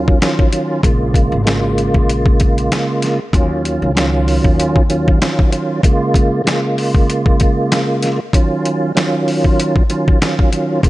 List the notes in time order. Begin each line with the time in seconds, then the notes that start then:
Already playing: D#2 D#3 F#3 C#4 F4
0.08 kick
0.20 D#3 F#3 C#4 F4, snare, closed hi-hat
0.39 kick
0.51 D#3 F#3 C#4 F4, closed hi-hat
0.83 A#1 C#3 G#3 A#3 F4, kick, closed hi-hat
1.14 kick, closed hi-hat
1.32 G#1
1.44 C#3 G#3 A#3 F4, snare, closed hi-hat
1.48 snare
1.78 closed hi-hat
1.94 A#1, kick
2.09 closed hi-hat
2.26 kick
2.40 kick, closed hi-hat
2.58 closed hi-hat
2.72 snare, closed hi-hat
3.02 snare, closed hi-hat
3.33 D#2 D#3 F#3 C#4 F4, kick, closed hi-hat
3.65 closed hi-hat
3.82 C#2
3.95 D#3 F#3 C#4 F4, snare, closed hi-hat
4.28 open hi-hat
4.44 D#2, kick
4.60 closed hi-hat
4.76 kick
4.90 D#3 F#3 C#4 F4, closed hi-hat
5.08 kick
5.21 D#3 F#3 C#4 F4, snare, closed hi-hat
5.39 kick
5.51 D#3 F#3 C#4 F4, closed hi-hat
5.83 C#3 G#3 A#3 F4, kick, closed hi-hat
6.14 kick, closed hi-hat
6.44 C#3 G#3 A#3 F4, snare, closed hi-hat
6.48 snare
6.78 open hi-hat
6.95 kick
7.10 closed hi-hat
7.26 kick
7.40 kick, closed hi-hat
7.72 snare, closed hi-hat
8.03 snare, closed hi-hat
8.33 D#3 F#3 C#4 F4, kick, closed hi-hat
8.65 closed hi-hat
8.95 D#3 F#3 C#4 F4, snare, closed hi-hat
9.28 open hi-hat
9.44 kick
9.60 closed hi-hat
9.76 kick
9.89 D#3 F#3 C#4 F4, closed hi-hat
10.08 kick
10.21 D#3 F#3 C#4 F4, snare, closed hi-hat
10.39 kick
10.51 D#3 F#3 C#4 F4, closed hi-hat
10.83 A#1 C#3 G#3 A#3 F4, kick, closed hi-hat